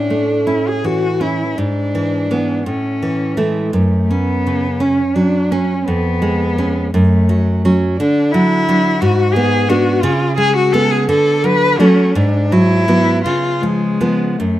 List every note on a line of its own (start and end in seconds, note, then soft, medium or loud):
0.00 1.53 A2 soft
0.00 0.33 C#4 soft
0.00 0.48 D4 medium
0.10 0.69 A3 soft
0.47 1.06 C#4 soft
0.47 0.70 E4 medium
0.68 0.86 G#4 medium
0.84 1.43 E3 soft
0.84 1.24 F#4 medium
1.21 1.57 C#4 soft
1.21 1.60 E4 medium
1.58 2.62 G#2 medium
1.58 2.66 D4 medium
1.95 2.29 E3 soft
2.31 2.62 E3 soft
2.31 2.62 B3 soft
2.66 3.70 A2 medium
2.66 3.39 C#4 medium
3.02 3.36 E3 soft
3.37 3.69 E3 soft
3.37 3.77 G#3 medium
3.37 3.70 A3 soft
3.73 5.82 F#2 medium
3.73 4.12 A3 medium
4.10 4.83 B3 medium
4.10 4.66 C#4 soft
4.47 5.01 C#3 soft
4.80 5.36 C#4 soft
4.80 5.17 C#4 medium
5.16 5.72 F#3 soft
5.16 5.53 D4 medium
5.51 5.87 C#4 medium
5.85 6.90 F2 medium
5.85 6.92 B3 medium
6.22 6.57 G#3 soft
6.58 6.90 G#3 soft
6.58 6.90 C#4 soft
6.93 7.96 F#2 medium
6.93 7.62 A3 medium
7.29 7.64 F#3 soft
7.65 7.96 F#3 soft
7.65 7.96 C#4 medium
7.97 8.99 D3 medium
7.97 8.34 D4 medium
8.32 8.67 F#3 medium
8.32 9.02 E4 medium
8.69 8.99 F#3 medium
8.69 8.99 D4 medium
9.01 10.00 G#2 medium
9.01 9.35 F#4 medium
9.33 9.68 B3 medium
9.33 9.70 G#4 medium
9.68 10.00 B3 medium
9.68 10.00 D4 medium
9.68 10.04 F#4 medium
10.03 11.06 C#3 medium
10.03 10.37 F4 medium
10.37 10.73 G#3 medium
10.37 10.55 G#4 loud
10.56 10.74 F#4 medium
10.72 11.06 G#3 medium
10.72 11.06 B3 medium
10.72 10.92 A4 medium
10.91 11.09 G#4 medium
11.09 11.80 D3 medium
11.09 11.47 A4 medium
11.44 11.79 F#3 soft
11.44 11.81 B4 loud
11.80 12.12 F#3 medium
11.80 12.12 A3 medium
11.80 12.18 C#4 medium
12.15 13.21 G#2 medium
12.15 12.54 D4 medium
12.52 12.87 F#3 medium
12.52 13.23 E4 loud
12.88 13.21 F#3 soft
12.88 13.21 B3 medium
13.24 14.36 C#3 medium
13.24 13.63 F4 medium
13.61 13.99 F3 soft
13.61 14.40 G#3 medium
14.01 14.35 F3 soft
14.01 14.35 B3 medium
14.38 14.60 F#2 medium
14.38 14.60 A3 medium